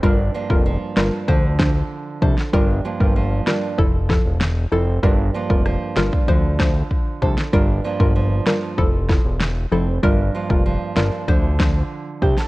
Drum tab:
SD |------o---o----o|------o---o-o---|----r-o---o----o|------o---o-o---|
BD |o--o----o-o---o-|o--o----o-o-----|o--o---oo-o-o-o-|o--o----o-o-----|

SD |------o---o----o|
BD |o--o----o-o---o-|